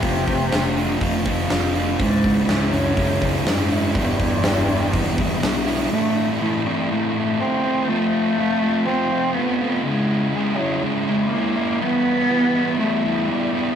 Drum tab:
HH |oooooooo|oooooooo|oooooooo|--------|
SD |--o---o-|--o---o-|--o---o-|--------|
BD |oo--oo--|oo--oo--|oo--oo--|--------|

HH |--------|--------|--------|
SD |--------|--------|--------|
BD |--------|--------|--------|